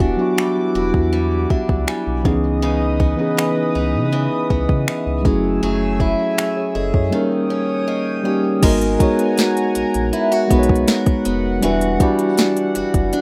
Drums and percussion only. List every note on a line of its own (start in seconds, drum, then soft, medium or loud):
0.00 kick medium
0.38 finger snap loud
0.94 kick medium
1.50 kick medium
1.69 kick medium
1.88 finger snap loud
2.25 kick loud
3.00 kick medium
3.39 finger snap loud
4.50 kick medium
4.69 kick medium
4.88 finger snap loud
5.25 kick loud
6.00 kick medium
6.38 finger snap loud
6.94 kick medium
8.63 kick loud
8.63 closed hi-hat medium
8.63 crash loud
8.81 closed hi-hat medium
9.00 kick medium
9.00 closed hi-hat medium
9.19 closed hi-hat medium
9.38 snare loud
9.38 closed hi-hat medium
9.57 closed hi-hat medium
9.75 closed hi-hat medium
9.94 closed hi-hat medium
10.13 closed hi-hat medium
10.32 closed hi-hat medium
10.51 kick loud
10.51 closed hi-hat medium
10.63 closed hi-hat medium
10.69 kick loud
10.76 closed hi-hat soft
10.88 snare loud
10.88 closed hi-hat medium
11.06 kick loud
11.06 closed hi-hat soft
11.25 closed hi-hat medium
11.63 closed hi-hat medium
11.81 closed hi-hat medium
12.00 kick medium
12.00 closed hi-hat medium
12.19 closed hi-hat medium
12.37 snare loud
12.37 closed hi-hat medium
12.57 closed hi-hat medium
12.75 closed hi-hat medium
12.94 kick medium
12.94 closed hi-hat medium
13.13 closed hi-hat medium